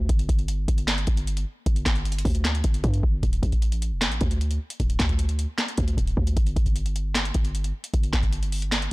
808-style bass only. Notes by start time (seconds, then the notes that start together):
0.09 G1
0.29 G1
0.68 G1
1.07 G1
1.66 G1
1.86 G1
2.25 D2
2.64 G1
2.84 G2
3.03 G1
3.23 D1
3.43 A1
3.92 F1
4.06 A1
4.21 D2
4.80 D1
4.99 D2
5.78 D2
5.97 D1
6.17 D2
6.37 G1
6.56 G1
7.35 G1
7.94 G1
8.13 G1